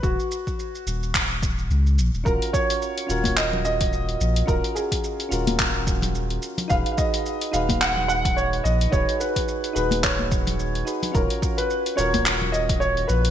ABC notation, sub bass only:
X:1
M:4/4
L:1/16
Q:"Swing 16ths" 1/4=108
K:Ebm
V:1 name="Sub bass" clef=bass
E,,, z4 z E,,,6 D,,2 B,,, E,,, | E,,, z4 z E,,,8 B,,,2 | E,,, z4 z E,,,8 z2 | E,,, z4 z E,,,8 B,,,2 |
E,,, z4 z E,,,8 z2 | E,,, z4 z E,,,8 B,,,2 |]